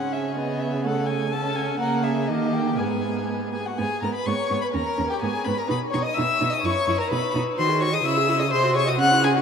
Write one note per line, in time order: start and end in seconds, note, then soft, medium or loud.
0.00 1.76 C#3 soft
0.00 0.38 C#4 soft
0.00 0.87 G#4 soft
0.00 0.14 F#5 medium
0.13 0.36 E5 soft
0.36 0.86 B3 soft
0.36 0.61 D#5 medium
0.60 0.84 E5 medium
0.85 1.34 A3 soft
0.85 1.31 A4 soft
0.85 1.08 F#5 medium
1.06 1.34 G#5 medium
1.32 1.79 C#4 medium
1.32 1.79 A4 medium
1.32 1.57 A5 medium
1.56 1.79 G#5 medium
1.79 2.30 C#3 medium
1.79 2.25 A#3 soft
1.79 2.03 A#4 medium
1.79 2.05 F#5 medium
2.03 2.29 G#4 soft
2.03 2.28 E5 medium
2.27 2.80 D#3 medium
2.27 2.79 A#3 medium
2.27 2.78 G4 medium
2.27 2.55 D#5 medium
2.53 2.79 G5 medium
2.76 3.58 G#2 soft
2.76 3.58 B3 soft
2.76 3.52 G#4 soft
2.76 3.28 G#5 medium
3.53 3.65 G#4 soft
3.53 3.67 G#5 medium
3.66 3.72 F#4 soft
3.66 3.80 F#5 medium
3.77 3.87 G#2 medium
3.77 3.86 B3 soft
3.77 4.04 G#4 medium
3.77 4.02 G#5 medium
4.02 4.10 G#2 soft
4.02 4.11 B3 soft
4.02 4.14 A#4 medium
4.02 4.14 A#5 medium
4.15 4.29 B4 medium
4.15 4.27 B5 medium
4.26 4.34 G#2 medium
4.26 4.35 B3 soft
4.26 4.65 C#5 medium
4.26 4.61 C#6 medium
4.50 4.59 G#2 medium
4.50 4.58 B3 soft
4.61 4.75 B4 medium
4.61 4.67 B5 medium
4.73 4.82 D#2 medium
4.73 4.81 C#4 soft
4.73 5.12 A#4 medium
4.73 5.09 A#5 medium
4.97 5.07 D#2 medium
4.97 5.05 C#4 soft
5.10 5.23 G4 medium
5.10 5.21 G5 medium
5.21 5.30 G#2 medium
5.21 5.29 B3 soft
5.21 5.47 G#4 medium
5.21 5.46 G#5 medium
5.44 5.55 G#2 medium
5.44 5.53 B3 soft
5.44 5.56 B4 medium
5.44 5.59 B5 medium
5.57 5.62 A#4 medium
5.57 5.70 A#5 medium
5.67 5.78 B2 medium
5.67 5.76 D#4 medium
5.67 5.75 B4 medium
5.67 5.79 B5 medium
5.90 6.02 B2 medium
5.90 6.01 D#4 medium
5.90 6.04 C#5 medium
5.90 5.98 C#6 medium
6.02 6.15 D#5 medium
6.02 6.19 D#6 medium
6.14 6.25 D#4 medium
6.14 6.51 E5 medium
6.14 6.55 E6 medium
6.18 6.26 B2 medium
6.40 6.49 B2 medium
6.40 6.48 D#4 medium
6.50 6.60 D#5 medium
6.54 6.67 D#6 medium
6.61 6.72 F#2 medium
6.61 6.72 E4 medium
6.61 7.00 C#5 medium
6.65 6.99 C#6 medium
6.87 6.95 F#2 medium
6.87 6.95 E4 medium
6.98 7.09 A#4 medium
6.98 7.12 A#5 medium
7.08 7.19 B2 medium
7.08 7.19 D#4 medium
7.08 7.33 B4 medium
7.13 7.35 B5 medium
7.34 7.42 B2 medium
7.34 7.43 D#4 medium
7.57 8.01 D#3 medium
7.57 7.70 F#4 medium
7.57 7.82 C5 medium
7.57 7.80 C6 medium
7.69 7.82 G#4 medium
7.80 7.94 F#4 medium
7.80 7.92 C#5 medium
7.80 7.95 C#6 medium
7.92 8.04 G#4 soft
7.92 7.97 D#5 medium
7.92 8.07 D#6 medium
8.04 8.54 C#3 medium
8.04 8.18 E4 medium
8.04 8.41 E5 medium
8.04 8.42 E6 medium
8.16 8.30 G#4 medium
8.28 8.40 E4 medium
8.39 8.50 G#4 medium
8.39 8.50 D#5 medium
8.39 8.52 D#6 medium
8.51 9.01 C3 medium
8.51 8.64 G#4 medium
8.51 8.75 C5 medium
8.51 8.76 C6 medium
8.63 8.77 F#4 medium
8.75 8.89 G#4 medium
8.75 8.86 C#5 medium
8.75 8.90 C#6 loud
8.86 8.98 F#4 medium
8.86 8.91 D#5 medium
8.86 9.00 D#6 medium
8.98 9.42 C#3 medium
8.98 9.13 C#4 medium
8.98 9.22 F#5 loud
8.98 9.26 F#6 loud
9.11 9.25 E4 medium
9.24 9.38 C#4 medium
9.24 9.35 G#4 medium
9.24 9.36 G#5 medium
9.35 9.42 E4 medium
9.35 9.40 F#4 medium
9.35 9.42 F#5 medium